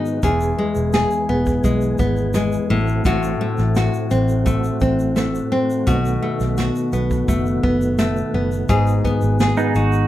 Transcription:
Already playing: nylon-string guitar G#2 B3 D#4 G#4, tonewheel organ D#3 G#3 B3 F#4
0.06 shaker
0.23 fingered electric bass E1, nylon-string guitar E2 G#4, tonewheel organ E3 G#3 B3 G#4, kick, shaker
0.41 shaker
0.58 nylon-string guitar G#3
0.75 fingered electric bass E1, shaker
0.93 nylon-string guitar G#4, snare, shaker
1.11 shaker
1.29 fingered electric bass E1, nylon-string guitar B3
1.46 kick, shaker
1.64 fingered electric bass B1, nylon-string guitar G#3, kick, shaker
1.81 shaker
1.98 fingered electric bass G#1, nylon-string guitar B3, kick, shaker
2.17 shaker
2.34 nylon-string guitar G#3, snare, shaker
2.52 shaker
2.70 fingered electric bass A1, nylon-string guitar A2, tonewheel organ A3 C4 F#4
2.88 shaker
3.05 fingered electric bass A1, nylon-string guitar A2 F#4, kick, shaker
3.23 shaker
3.41 nylon-string guitar A3
3.58 fingered electric bass A1, snare, shaker
3.75 nylon-string guitar F#4, snare, shaker
3.94 shaker
4.10 fingered electric bass A1, nylon-string guitar C4, shaker
4.29 shaker
4.46 nylon-string guitar A3, kick, shaker
4.64 shaker
4.80 fingered electric bass A1, nylon-string guitar C4, kick, shaker
4.99 shaker
5.16 nylon-string guitar A3, snare, shaker
5.35 shaker
5.52 nylon-string guitar C4
5.70 shaker
5.87 fingered electric bass B1, nylon-string guitar B2 F#4, tonewheel organ D#3 B3, kick, shaker
6.05 shaker
6.22 nylon-string guitar A3
6.40 fingered electric bass B1, snare, shaker
6.57 nylon-string guitar F#4, snare, shaker
6.76 shaker
6.93 fingered electric bass B1, nylon-string guitar B3, shaker
7.11 kick, shaker
7.28 fingered electric bass F#1, nylon-string guitar A3, kick, shaker
7.46 shaker
7.63 fingered electric bass F#1, nylon-string guitar B3, kick
7.81 shaker
7.98 nylon-string guitar A3, snare, shaker
8.16 shaker
8.34 fingered electric bass F#1, nylon-string guitar B3
8.52 shaker
8.69 fingered electric bass G#1, nylon-string guitar G#2 G#4, tonewheel organ G#3 F#4, kick, shaker
8.87 shaker
9.04 nylon-string guitar B3, kick, shaker
9.21 fingered electric bass G#1, shaker
9.39 nylon-string guitar G#4, snare, shaker
9.57 pedal steel guitar B3 D#4, shaker
9.75 fingered electric bass G#1, nylon-string guitar D#4, pedal steel guitar D#4 F#4, shaker
9.93 shaker

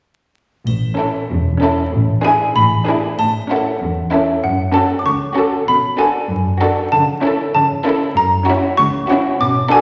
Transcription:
0.67 double bass section A1, cello section A2, triangle
0.98 viola section C#4, violin section E4 A4
1.30 double bass section E1, cello section E2
1.61 viola section C#4, violin section E4 A4
1.93 double bass section A1, cello section A2
2.24 viola section D4, violin section E4 G#4, xylophone G#5
2.55 double bass section A1, cello section A2, xylophone B5
2.86 viola section D4, violin section E4 G#4
3.19 cello section A2, xylophone A5, triangle
3.49 viola section C#4, violin section E4 A4, xylophone F#5
3.81 cello section E2
4.12 viola section C#4, violin section E4 A4, xylophone E5
4.43 cello section F#2, xylophone F#5
4.74 viola section C#4, violin section F#4 A4, xylophone A5
4.99 xylophone D6
5.06 cello section C#2, xylophone C#6
5.34 viola section C#4, violin section F#4 A4
5.68 cello section B2, xylophone B5
5.98 viola section D4, violin section F#4 A4, xylophone G#5
6.30 cello section F#2
6.61 viola section D4, violin section F#4 A4, xylophone F#5
6.92 cello section C#3, xylophone A5
7.23 viola section C#4, violin section E4 A4
7.55 cello section C#3, xylophone A5
7.85 viola section C#4, violin section E4 A4
8.17 cello section F#2, xylophone A#5
8.48 viola section C#4, violin section E4 F#4
8.77 cello section C#2, xylophone C#6
9.09 viola section C#4, violin section E4 F#4
9.41 cello section B2, xylophone D6
9.71 viola section D4, violin section F#4 A4, xylophone G#5

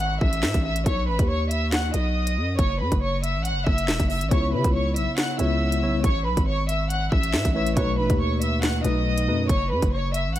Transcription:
Already playing: 808-style bass G#1, downlifter
0.00 violin section F#5 F#6, closed hi-hat
0.21 808-style bass A1, violin section E5 E6, kick
0.33 closed hi-hat
0.43 808-style bass A2, snare, clap
0.54 808-style bass A1, kick, closed hi-hat
0.64 violin section E5 E6
0.76 closed hi-hat
0.86 808-style bass B1, violin section C#5 C#6, kick, closed hi-hat
1.08 808-style bass A1, violin section B4 B5
1.19 808-style bass D#2, kick, closed hi-hat
1.29 violin section C#5 C#6
1.51 violin section E5 E6, closed hi-hat
1.72 violin section F#5 F#6, snare, clap, closed hi-hat
1.94 808-style bass B1, violin section D#5 D#6, closed hi-hat
2.27 closed hi-hat
2.37 808-style bass F#2
2.59 808-style bass F#1, violin section C#5 C#6, kick, closed hi-hat
2.80 808-style bass F#2, violin section B4 B5
2.92 808-style bass F#1, kick, closed hi-hat
3.02 violin section C#5 C#6
3.23 violin section E5 E6, closed hi-hat
3.35 808-style bass A1
3.45 violin section F#5 F#6, closed hi-hat
3.51 808-style bass F#1
3.67 808-style bass F#1, violin section E5 E6, kick
3.78 closed hi-hat
3.88 808-style bass E1, snare, clap
4.00 808-style bass F#1, kick, closed hi-hat
4.10 violin section E5 E6, open hi-hat
4.21 808-style bass A1, closed hi-hat
4.31 808-style bass C#2, tine electric piano C#3 B3 E4 C#5, violin section C#5 C#6, kick, closed hi-hat
4.53 808-style bass C#3, violin section B4 B5
4.64 808-style bass C#2, kick, closed hi-hat
4.75 violin section C#5 C#6
4.96 808-style bass B1, violin section E5 E6, closed hi-hat
5.18 violin section F#5 F#6, snare, clap, closed hi-hat
5.38 808-style bass C#2, tine electric piano C#3 B3 E4 C#5, violin section E5 E6, closed hi-hat
5.72 closed hi-hat
5.82 808-style bass B1, tine electric piano C#3 B3 E4 C#5
5.94 808-style bass C#2
6.04 808-style bass A1, violin section C#5 C#6, kick, closed hi-hat
6.26 808-style bass B1, violin section B4 B5
6.37 808-style bass G#1, kick, closed hi-hat
6.47 violin section C#5 C#6
6.69 violin section E5 E6, closed hi-hat
6.90 violin section F#5 F#6, closed hi-hat
7.12 808-style bass A1, violin section E5 E6, kick
7.23 closed hi-hat
7.34 808-style bass A2, snare, clap
7.45 808-style bass A1, kick, closed hi-hat
7.54 tine electric piano A3 E4 B4 C#5, violin section E5 E6
7.67 closed hi-hat
7.76 808-style bass B1, tine electric piano B2 A3 D#4 B4, violin section C#5 C#6, kick, closed hi-hat
7.98 808-style bass A1, violin section B4 B5
8.10 808-style bass D#2, kick, closed hi-hat
8.20 violin section C#5 C#6
8.41 violin section E5 E6, closed hi-hat
8.63 violin section F#5 F#6, snare, clap, closed hi-hat
8.84 808-style bass B1, tine electric piano B2 A3 D#4 B4, violin section D#5 D#6, closed hi-hat
9.18 closed hi-hat
9.27 808-style bass F#2, tine electric piano B2 A3 D#4 B4
9.49 808-style bass F#1, violin section C#5 C#6, kick, closed hi-hat
9.71 808-style bass F#2, violin section B4 B5
9.82 808-style bass F#1, kick, closed hi-hat
9.93 violin section C#5 C#6
10.14 violin section E5 E6, closed hi-hat
10.26 808-style bass A1
10.36 violin section F#5, closed hi-hat

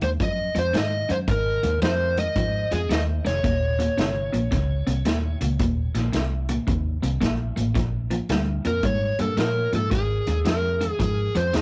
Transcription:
0.01 fingered electric bass D#2, clean electric guitar G#2 D#3, electric slide guitar C5, closed hi-hat
0.20 fingered electric bass F#2, clean electric guitar G#2 F3, electric slide guitar D#5, kick, closed hi-hat
0.55 fingered electric bass F2, clean electric guitar G#2 F3, electric slide guitar C5, closed hi-hat
0.73 clean electric guitar G#2 D#3, fingered electric bass G#2, snare, closed hi-hat
0.77 electric slide guitar D#5
1.09 fingered electric bass F#2, clean electric guitar G#2 D#3, electric slide guitar C5, closed hi-hat
1.28 fingered electric bass G#1, clean electric guitar G#2 D#3, electric slide guitar A#4, kick, closed hi-hat
1.63 fingered electric bass D#2, clean electric guitar G#2 D#3, closed hi-hat
1.82 fingered electric bass F2, clean electric guitar G#2 F3, electric slide guitar C5, snare, closed hi-hat
2.17 clean electric guitar G#2 D#3, electric slide guitar D#5, closed hi-hat
2.36 fingered electric bass G#2, clean electric guitar G#2 F3, kick, closed hi-hat
2.71 fingered electric bass F2, clean electric guitar G#2 F3, electric slide guitar G#4, closed hi-hat
2.89 fingered electric bass D#2, clean electric guitar G#2 D#3, electric slide guitar D#5, snare, closed hi-hat
3.25 fingered electric bass F1, clean electric guitar G#2 D#3, electric slide guitar C#5, snare, closed hi-hat
3.44 fingered electric bass D#1, clean electric guitar D#2 A#2, kick, closed hi-hat
3.79 clean electric guitar D#2 A#2, closed hi-hat
3.98 fingered electric bass G1, clean electric guitar D#2 C3, snare, closed hi-hat
4.33 fingered electric bass A#1, clean electric guitar D#2 A#2, closed hi-hat
4.51 fingered electric bass C#2, clean electric guitar D#2 C3, kick, snare, closed hi-hat
4.87 fingered electric bass C2, clean electric guitar D#2 C3, closed hi-hat
5.05 clean electric guitar D#2 A#2, fingered electric bass D#2, snare, closed hi-hat
5.41 fingered electric bass C#2, clean electric guitar D#2 A#2, closed hi-hat
5.59 fingered electric bass D#1, clean electric guitar D#2 A#2, kick, closed hi-hat
5.95 fingered electric bass A#1, clean electric guitar D#2 A#2, snare, closed hi-hat
6.12 fingered electric bass C2, clean electric guitar D#2 C3, snare, closed hi-hat
6.49 clean electric guitar D#2 A#2, closed hi-hat
6.67 clean electric guitar D#2 C3, fingered electric bass D#2, kick, closed hi-hat
7.02 fingered electric bass C2, clean electric guitar D#2 C3, closed hi-hat
7.21 fingered electric bass A#1, clean electric guitar D#2 A#2, kick, snare, closed hi-hat
7.56 fingered electric bass A1, clean electric guitar D#2 A#2, closed hi-hat
7.75 fingered electric bass A#1, clean electric guitar A#2 F3, kick, snare, closed hi-hat
8.10 clean electric guitar A#2 F3, closed hi-hat
8.29 fingered electric bass D2, clean electric guitar A#2 G3, snare, closed hi-hat
8.65 fingered electric bass F2, clean electric guitar A#2 F3, electric slide guitar A#4, closed hi-hat
8.83 fingered electric bass G#2, clean electric guitar A#2 G3, electric slide guitar C#5, kick, closed hi-hat
9.19 fingered electric bass G2, clean electric guitar A#2 G3, electric slide guitar A4, closed hi-hat
9.37 clean electric guitar A#2 F3, fingered electric bass A#2, electric slide guitar A#4, snare, closed hi-hat
9.73 fingered electric bass G#2, clean electric guitar A#2 F3, electric slide guitar A4, closed hi-hat
9.91 fingered electric bass G#1, clean electric guitar G#2 D#3, electric slide guitar G#4, kick, snare, closed hi-hat
10.27 fingered electric bass D#2, clean electric guitar G#2 D#3, closed hi-hat
10.45 fingered electric bass F2, clean electric guitar G#2 F3, electric slide guitar A#4, snare, closed hi-hat
10.81 clean electric guitar G#2 D#3, closed hi-hat
10.90 electric slide guitar G#4
10.99 clean electric guitar G#2 F3, fingered electric bass G#2, electric slide guitar G#4, kick, closed hi-hat
11.35 fingered electric bass F2, clean electric guitar G#2 F3, electric slide guitar C5, closed hi-hat
11.53 fingered electric bass D#2, clean electric guitar G#2 D#3, electric slide guitar G#4, snare, closed hi-hat

